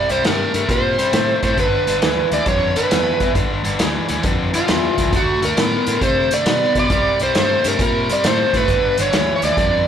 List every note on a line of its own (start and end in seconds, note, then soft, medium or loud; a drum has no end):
0.00 0.12 D5 medium
0.09 0.19 C2 medium
0.09 0.23 C3 medium
0.09 0.23 G3 medium
0.09 0.26 C5 loud
0.09 closed hi-hat medium
0.24 0.44 G2 medium
0.24 0.51 C3 medium
0.24 0.51 A3 medium
0.24 0.71 A#4 medium
0.24 snare loud
0.24 closed hi-hat medium
0.54 0.64 G2 medium
0.54 0.67 C3 medium
0.54 0.68 A3 medium
0.54 closed hi-hat medium
0.68 0.98 A#2 medium
0.68 0.95 C3 medium
0.68 0.96 G3 medium
0.68 1.43 C5 medium
0.68 kick medium
0.68 closed hi-hat medium
0.98 1.11 C3 medium
0.98 1.12 G3 medium
0.98 closed hi-hat medium
1.13 1.32 A2 medium
1.13 1.40 C3 medium
1.13 1.40 A3 medium
1.13 snare loud
1.13 closed hi-hat medium
1.43 1.53 A2 medium
1.43 1.56 C3 medium
1.43 1.56 A3 medium
1.43 1.57 C5 medium
1.43 kick medium
1.43 closed hi-hat medium
1.57 1.77 G1 medium
1.57 1.84 G2 medium
1.57 1.85 D3 medium
1.57 2.35 B4 medium
1.57 kick medium
1.57 closed hi-hat medium
1.87 1.97 G1 medium
1.87 2.01 G2 medium
1.87 2.01 D3 medium
1.87 closed hi-hat soft
2.02 2.22 D2 medium
2.02 2.29 G2 medium
2.02 2.29 E3 medium
2.02 snare loud
2.02 closed hi-hat medium
2.31 2.41 D2 medium
2.31 2.45 G2 medium
2.31 2.45 E3 medium
2.31 2.48 D5 medium
2.31 closed hi-hat medium
2.46 2.75 F2 medium
2.46 2.73 G2 medium
2.46 2.73 D3 medium
2.46 2.78 C#5 medium
2.46 kick loud
2.46 closed hi-hat medium
2.76 2.89 G2 medium
2.76 2.90 D3 medium
2.76 3.31 B4 medium
2.76 closed hi-hat medium
2.91 3.11 E2 medium
2.91 3.18 G2 medium
2.91 3.18 E3 medium
2.91 snare loud
2.91 closed hi-hat medium
3.20 3.30 E2 medium
3.20 3.33 G2 medium
3.20 3.34 E3 medium
3.20 kick medium
3.20 closed hi-hat medium
3.34 3.54 G1 medium
3.34 3.61 G2 medium
3.34 3.62 D3 medium
3.34 kick loud
3.34 closed hi-hat medium
3.64 3.75 G1 medium
3.64 3.78 G2 medium
3.64 3.78 D3 medium
3.64 closed hi-hat medium
3.79 3.99 D2 medium
3.79 4.06 G2 medium
3.79 4.06 E3 medium
3.79 snare loud
3.79 closed hi-hat medium
4.08 4.19 D2 medium
4.08 4.22 G2 medium
4.08 4.22 E3 medium
4.08 closed hi-hat medium
4.23 4.53 F2 medium
4.23 4.50 G2 medium
4.23 4.51 D3 medium
4.23 kick loud
4.23 closed hi-hat medium
4.53 4.67 G2 medium
4.53 4.67 D3 medium
4.53 5.15 F4 medium
4.53 closed hi-hat medium
4.68 4.88 E2 medium
4.68 4.95 G2 medium
4.68 4.95 E3 medium
4.68 snare loud
4.68 closed hi-hat medium
4.98 5.08 C#2 medium
4.98 5.12 G2 medium
4.98 5.12 E3 medium
4.98 kick medium
4.98 closed hi-hat medium
5.13 5.32 D2 medium
5.13 5.39 D3 medium
5.13 5.40 A3 medium
5.13 5.45 F#4 medium
5.13 kick loud
5.13 closed hi-hat medium
5.42 5.52 D2 medium
5.42 5.56 D3 medium
5.42 5.56 A3 medium
5.42 6.03 A#4 loud
5.42 closed hi-hat soft
5.57 5.76 A2 medium
5.57 5.84 D3 medium
5.57 5.84 B3 medium
5.57 snare loud
5.57 closed hi-hat medium
5.86 5.97 A2 medium
5.86 6.00 D3 medium
5.86 6.01 B3 medium
5.86 closed hi-hat medium
6.01 6.30 C3 medium
6.01 6.28 D3 medium
6.01 6.28 A3 medium
6.01 6.33 C5 medium
6.01 kick medium
6.01 closed hi-hat medium
6.31 6.45 D3 medium
6.31 6.45 A3 medium
6.31 6.78 D5 loud
6.31 closed hi-hat medium
6.46 6.65 B2 medium
6.46 6.73 D3 medium
6.46 6.73 B3 loud
6.46 snare loud
6.46 closed hi-hat medium
6.75 6.85 B2 medium
6.75 6.89 D3 medium
6.75 6.90 B3 medium
6.75 kick medium
6.75 closed hi-hat medium
6.80 7.19 D5 loud
6.90 7.09 C2 medium
6.90 7.17 C3 medium
6.90 7.17 G3 medium
6.90 kick medium
6.90 closed hi-hat medium
7.19 7.30 C2 medium
7.19 7.34 C3 medium
7.19 7.34 G3 medium
7.19 7.36 C5 medium
7.19 closed hi-hat soft
7.35 7.54 G2 medium
7.35 7.62 C3 medium
7.35 7.62 A3 medium
7.35 7.67 C5 loud
7.35 snare loud
7.35 closed hi-hat medium
7.64 7.74 G2 medium
7.64 7.78 C3 medium
7.64 7.78 A3 medium
7.64 7.80 A#4 medium
7.64 closed hi-hat medium
7.79 8.08 A#2 medium
7.79 8.06 C3 loud
7.79 8.07 G3 medium
7.79 8.11 A#4 medium
7.79 kick loud
7.79 closed hi-hat medium
8.09 8.23 C3 medium
8.09 8.23 G3 medium
8.09 8.26 D5 medium
8.09 closed hi-hat medium
8.24 8.43 A2 medium
8.24 8.51 C3 medium
8.24 8.51 A3 medium
8.24 8.56 C5 loud
8.24 snare loud
8.24 closed hi-hat medium
8.53 8.63 A2 medium
8.53 8.67 C3 medium
8.53 8.68 A3 medium
8.53 9.01 B4 loud
8.53 kick medium
8.53 snare soft
8.53 closed hi-hat medium
8.68 8.87 G1 medium
8.68 8.96 G2 medium
8.68 8.96 D3 medium
8.68 kick loud
8.68 closed hi-hat medium
8.97 9.08 G1 medium
8.97 9.12 G2 medium
8.97 9.12 D3 medium
8.97 closed hi-hat medium
9.02 9.35 C#5 loud
9.13 9.32 D2 medium
9.13 9.39 G2 medium
9.13 9.40 E3 medium
9.13 snare loud
9.13 closed hi-hat medium
9.36 9.44 C#5 medium
9.42 9.52 D2 medium
9.42 9.56 G2 medium
9.42 9.56 E3 medium
9.42 9.88 D5 medium
9.42 closed hi-hat medium
9.57 9.86 F2 medium
9.57 9.84 G2 loud
9.57 9.84 D3 medium
9.57 kick loud
9.57 closed hi-hat medium